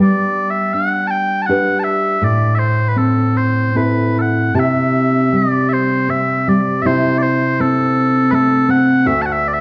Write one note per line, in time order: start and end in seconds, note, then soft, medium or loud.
0.00 2.21 G3 medium
0.00 1.33 B3 medium
0.00 0.74 D4 soft
0.00 1.50 B4 soft
0.00 0.50 D5 medium
0.50 0.74 E5 medium
0.74 1.48 D4 medium
0.74 1.07 F#5 medium
1.07 1.42 G5 medium
1.07 1.11 A5 medium
1.42 1.46 A5 medium
1.46 2.30 D4 medium
1.46 2.30 G4 medium
1.46 2.30 B4 medium
1.46 1.79 F#5 medium
1.79 1.84 A5 medium
1.84 2.24 E5 medium
2.22 4.54 A2 medium
2.22 2.55 D5 medium
2.55 2.89 C5 medium
2.55 2.59 E5 medium
2.89 2.97 B4 medium
2.96 3.75 C4 soft
2.96 3.37 A4 medium
3.37 3.77 C5 medium
3.75 5.32 C4 soft
3.75 6.08 E4 soft
3.75 4.55 A4 soft
3.75 4.19 B4 medium
4.20 4.55 F#5 medium
4.54 6.84 C3 medium
4.54 6.84 G4 medium
4.54 4.59 A5 medium
4.59 5.37 E5 medium
5.32 6.47 G3 medium
5.37 5.69 D5 medium
5.69 5.73 E5 medium
5.73 6.10 C5 medium
6.08 7.60 C4 soft
6.08 6.49 E5 medium
6.48 6.92 G3 medium
6.48 6.82 D5 medium
6.82 9.05 C3 medium
6.82 9.05 E4 medium
6.82 6.86 E5 medium
6.86 7.18 C5 medium
7.18 7.22 D5 medium
7.22 7.61 C5 medium
7.60 8.67 C4 medium
7.60 8.31 A4 medium
8.31 9.12 A3 medium
8.31 8.70 A4 medium
8.31 8.34 B4 medium
8.68 9.12 C4 medium
8.68 9.07 F#5 medium
9.06 9.61 D2 medium
9.06 9.61 F#4 medium
9.06 9.22 E5 medium
9.22 9.26 A5 medium
9.26 9.32 F#5 medium
9.32 9.48 E5 loud
9.48 9.53 D5 medium
9.53 9.61 E5 medium